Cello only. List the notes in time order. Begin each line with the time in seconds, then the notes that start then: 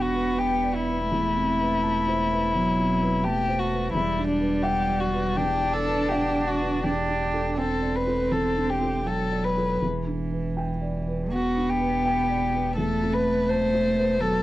Already playing: B3
1.09 A3
2.54 F#3
3.24 A3
3.95 G3
5.38 D4
6.83 D4
7.58 C4
9.06 F#3
9.81 E3
11.30 B3
12.75 A3
14.20 F#3